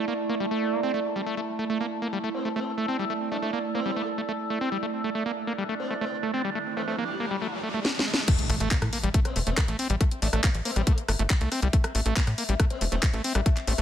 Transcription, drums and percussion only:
7.85 snare medium
7.99 snare medium
8.14 snare medium
8.28 kick loud
8.28 closed hi-hat medium
8.28 crash loud
8.39 closed hi-hat medium
8.50 cross-stick soft
8.50 open hi-hat loud
8.60 closed hi-hat medium
8.71 kick loud
8.71 clap loud
8.71 closed hi-hat medium
8.82 cross-stick medium
8.82 closed hi-hat medium
8.93 open hi-hat loud
9.03 closed hi-hat medium
9.14 kick loud
9.14 closed hi-hat medium
9.25 cross-stick soft
9.25 closed hi-hat medium
9.36 open hi-hat loud
9.47 closed hi-hat medium
9.57 kick loud
9.57 cross-stick medium
9.57 clap loud
9.57 closed hi-hat medium
9.68 closed hi-hat medium
9.79 open hi-hat loud
9.90 closed hi-hat medium
10.01 kick loud
10.01 cross-stick soft
10.01 closed hi-hat medium
10.11 closed hi-hat medium
10.22 open hi-hat loud
10.33 cross-stick medium
10.33 closed hi-hat medium
10.44 kick loud
10.44 clap loud
10.44 closed hi-hat medium
10.55 closed hi-hat medium
10.65 open hi-hat loud
10.76 cross-stick soft
10.76 closed hi-hat medium
10.87 kick loud
10.87 closed hi-hat medium
10.98 closed hi-hat medium
11.08 cross-stick medium
11.08 open hi-hat loud
11.19 closed hi-hat medium
11.30 kick loud
11.30 clap loud
11.30 closed hi-hat medium
11.41 closed hi-hat medium
11.52 cross-stick soft
11.52 open hi-hat loud
11.62 closed hi-hat medium
11.73 kick loud
11.73 closed hi-hat medium
11.84 cross-stick medium
11.84 closed hi-hat medium
11.95 open hi-hat loud
12.06 closed hi-hat medium
12.16 kick loud
12.16 clap loud
12.16 closed hi-hat medium
12.27 cross-stick soft
12.27 closed hi-hat medium
12.38 open hi-hat loud
12.49 closed hi-hat medium
12.60 kick loud
12.60 cross-stick medium
12.60 closed hi-hat medium
12.70 closed hi-hat soft
12.81 open hi-hat loud
12.92 closed hi-hat medium
13.03 kick loud
13.03 cross-stick soft
13.03 clap loud
13.03 closed hi-hat medium
13.14 closed hi-hat medium
13.24 open hi-hat loud
13.35 cross-stick medium
13.35 closed hi-hat medium
13.46 kick loud
13.46 closed hi-hat medium
13.57 clap soft
13.57 closed hi-hat medium
13.67 open hi-hat loud
13.78 cross-stick soft
13.78 closed hi-hat medium

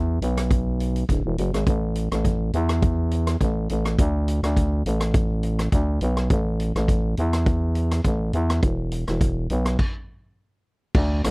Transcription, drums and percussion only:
0.22 closed hi-hat medium
0.37 cross-stick medium
0.37 closed hi-hat medium
0.51 kick medium
0.51 closed hi-hat medium
0.80 closed hi-hat medium
0.96 closed hi-hat medium
1.09 kick medium
1.09 closed hi-hat soft
1.38 closed hi-hat medium
1.54 cross-stick medium
1.54 closed hi-hat soft
1.67 kick loud
1.67 closed hi-hat medium
1.95 closed hi-hat medium
2.12 cross-stick medium
2.12 closed hi-hat soft
2.25 kick medium
2.25 closed hi-hat soft
2.53 closed hi-hat medium
2.69 cross-stick medium
2.69 closed hi-hat medium
2.82 kick loud
2.82 closed hi-hat medium
3.11 closed hi-hat medium
3.27 cross-stick medium
3.27 closed hi-hat medium
3.41 kick medium
3.41 closed hi-hat medium
3.69 closed hi-hat medium
3.85 cross-stick medium
3.85 closed hi-hat soft
3.99 kick medium
3.99 closed hi-hat medium
4.28 closed hi-hat medium
4.44 cross-stick medium
4.44 closed hi-hat medium
4.57 kick medium
4.57 closed hi-hat medium
4.86 closed hi-hat medium
5.00 cross-stick medium
5.00 closed hi-hat medium
5.14 kick loud
5.14 closed hi-hat medium
5.43 closed hi-hat medium
5.59 cross-stick medium
5.59 closed hi-hat medium
5.72 kick medium
5.72 closed hi-hat soft
6.01 closed hi-hat medium
6.17 cross-stick medium
6.17 closed hi-hat soft
6.30 kick loud
6.30 closed hi-hat medium
6.60 closed hi-hat medium
6.76 cross-stick medium
6.76 closed hi-hat soft
6.88 kick medium
6.88 closed hi-hat soft
7.17 closed hi-hat medium
7.33 cross-stick medium
7.33 closed hi-hat medium
7.46 kick loud
7.46 closed hi-hat soft
7.75 closed hi-hat medium
7.91 cross-stick medium
7.91 closed hi-hat medium
8.04 kick medium
8.04 closed hi-hat medium
8.33 closed hi-hat medium
8.50 cross-stick medium
8.50 closed hi-hat medium
8.63 kick loud
8.63 closed hi-hat medium
8.92 closed hi-hat medium
9.07 cross-stick medium
9.07 closed hi-hat soft
9.21 kick medium
9.21 closed hi-hat medium
9.50 closed hi-hat medium
9.65 cross-stick medium
9.65 closed hi-hat medium
9.79 kick medium
9.79 crash medium
10.95 kick loud
10.95 crash loud
11.24 cross-stick medium
11.24 closed hi-hat medium

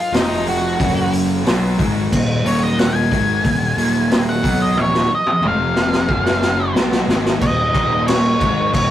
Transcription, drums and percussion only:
0.14 snare loud
0.14 open hi-hat medium
0.46 open hi-hat medium
0.80 kick loud
0.80 open hi-hat medium
1.13 open hi-hat medium
1.46 snare loud
1.46 open hi-hat medium
1.79 kick loud
1.79 open hi-hat medium
2.12 kick medium
2.12 crash medium
2.46 open hi-hat medium
2.79 snare loud
2.79 open hi-hat medium
3.12 kick loud
3.12 open hi-hat medium
3.44 kick medium
3.44 open hi-hat medium
3.78 open hi-hat medium
4.11 snare loud
4.11 open hi-hat medium
4.44 kick medium
4.44 open hi-hat medium
4.77 high tom medium
4.94 snare medium
5.26 high tom medium
5.42 mid tom medium
5.76 snare medium
5.92 snare medium
6.09 kick loud
6.26 snare medium
6.42 snare medium
6.76 snare loud
6.92 snare medium
7.09 snare medium
7.25 snare medium
7.41 kick medium
7.41 crash medium
7.74 kick loud
7.74 crash medium
8.08 snare loud
8.08 crash medium
8.41 kick loud
8.41 crash medium
8.74 kick medium
8.74 crash medium

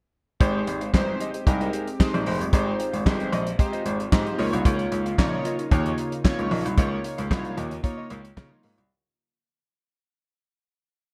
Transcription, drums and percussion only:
0.41 kick loud
0.41 closed hi-hat loud
0.67 closed hi-hat medium
0.81 closed hi-hat soft
0.94 kick loud
0.94 snare medium
0.94 clap medium
1.20 closed hi-hat medium
1.34 closed hi-hat medium
1.47 kick loud
1.47 closed hi-hat medium
1.61 closed hi-hat soft
1.73 closed hi-hat medium
1.88 closed hi-hat medium
2.00 kick loud
2.00 snare loud
2.00 clap medium
2.14 closed hi-hat soft
2.26 open hi-hat medium
2.41 closed hi-hat medium
2.53 kick loud
2.53 closed hi-hat loud
2.80 closed hi-hat medium
2.94 closed hi-hat soft
3.06 kick medium
3.06 snare loud
3.06 clap medium
3.20 closed hi-hat soft
3.33 closed hi-hat medium
3.47 closed hi-hat medium
3.59 kick loud
3.59 closed hi-hat medium
3.73 closed hi-hat soft
3.86 closed hi-hat medium
4.00 closed hi-hat soft
4.12 kick loud
4.12 snare loud
4.12 clap loud
4.26 closed hi-hat soft
4.39 open hi-hat medium
4.53 closed hi-hat medium
4.65 kick loud
4.65 closed hi-hat loud
4.79 closed hi-hat soft
4.92 closed hi-hat medium
5.06 closed hi-hat soft
5.18 kick medium
5.18 snare medium
5.18 clap medium
5.45 closed hi-hat medium
5.59 closed hi-hat soft
5.71 kick loud
5.71 closed hi-hat medium
5.86 closed hi-hat soft
5.98 closed hi-hat medium
6.12 closed hi-hat soft
6.25 kick loud
6.25 snare loud
6.25 clap medium
6.39 closed hi-hat soft
6.51 open hi-hat medium
6.66 closed hi-hat medium
6.78 kick loud
6.78 closed hi-hat loud
7.04 closed hi-hat medium
7.18 closed hi-hat soft
7.31 kick loud
7.31 snare medium
7.31 clap medium
7.45 closed hi-hat soft
7.58 closed hi-hat medium
7.71 closed hi-hat medium
7.84 kick loud
7.84 closed hi-hat medium
8.10 closed hi-hat medium
8.25 closed hi-hat medium
8.37 kick loud
8.37 snare loud
8.37 clap medium
8.63 open hi-hat medium
8.78 closed hi-hat medium

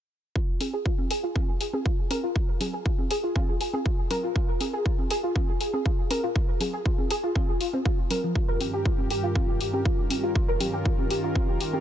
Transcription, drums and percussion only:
0.36 kick loud
0.61 open hi-hat loud
0.61 high conga medium
0.86 kick loud
0.98 high conga medium
1.11 open hi-hat medium
1.36 kick loud
1.36 high conga medium
1.61 open hi-hat medium
1.73 high conga medium
1.86 kick loud
2.11 open hi-hat medium
2.11 high conga medium
2.36 kick loud
2.61 open hi-hat loud
2.61 high conga medium
2.61 low conga medium
2.86 kick loud
2.98 high conga medium
3.11 open hi-hat medium
3.36 kick loud
3.36 high conga medium
3.61 open hi-hat loud
3.73 high conga medium
3.86 kick loud
4.11 open hi-hat medium
4.11 high conga medium
4.11 low conga medium
4.36 kick loud
4.61 open hi-hat loud
4.61 high conga medium
4.86 kick loud
4.99 high conga medium
5.11 open hi-hat medium
5.36 kick loud
5.36 high conga medium
5.61 open hi-hat loud
5.74 high conga medium
5.86 kick loud
6.11 open hi-hat medium
6.11 high conga medium
6.36 kick loud
6.61 open hi-hat loud
6.61 high conga medium
6.61 low conga medium
6.86 kick loud
6.98 high conga medium
7.11 open hi-hat medium
7.36 kick loud
7.36 high conga medium
7.61 open hi-hat loud
7.73 high conga medium
7.86 kick loud
8.11 open hi-hat medium
8.11 high conga medium
8.11 low conga medium
8.35 kick loud
8.60 open hi-hat medium
8.60 high conga medium
8.86 kick loud
8.98 high conga medium
9.10 open hi-hat medium
9.35 kick loud
9.35 high conga medium
9.61 open hi-hat loud
9.73 high conga medium
9.85 kick loud
10.10 open hi-hat medium
10.10 high conga medium
10.35 kick loud
10.60 open hi-hat medium
10.60 high conga medium
10.60 low conga medium
10.86 kick loud
10.98 high conga medium
11.11 open hi-hat medium
11.35 kick loud
11.35 high conga medium
11.61 open hi-hat loud
11.73 high conga medium

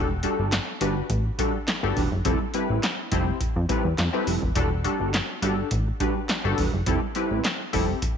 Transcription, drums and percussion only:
0.23 closed hi-hat medium
0.52 snare loud
0.52 clap medium
0.52 closed hi-hat medium
0.81 closed hi-hat medium
1.10 kick loud
1.10 closed hi-hat medium
1.39 kick medium
1.39 closed hi-hat medium
1.68 snare loud
1.68 clap medium
1.68 closed hi-hat medium
1.96 kick medium
1.96 open hi-hat medium
2.25 kick loud
2.25 closed hi-hat medium
2.54 closed hi-hat medium
2.83 snare loud
2.83 clap medium
2.83 closed hi-hat medium
3.12 kick medium
3.12 closed hi-hat medium
3.41 kick loud
3.41 closed hi-hat medium
3.69 kick loud
3.69 closed hi-hat medium
3.98 snare loud
3.98 clap medium
3.98 closed hi-hat medium
4.27 open hi-hat medium
4.42 kick medium
4.55 kick loud
4.55 closed hi-hat loud
4.85 closed hi-hat medium
5.14 snare loud
5.14 clap medium
5.14 closed hi-hat medium
5.43 closed hi-hat medium
5.71 kick loud
5.71 closed hi-hat medium
6.00 kick medium
6.00 closed hi-hat medium
6.29 snare loud
6.29 clap medium
6.29 closed hi-hat medium
6.58 kick medium
6.58 open hi-hat medium
6.86 kick loud
6.86 closed hi-hat medium
7.15 closed hi-hat medium
7.44 snare loud
7.44 clap medium
7.44 closed hi-hat medium
7.73 kick medium
7.73 open hi-hat medium
8.02 kick loud
8.02 closed hi-hat medium

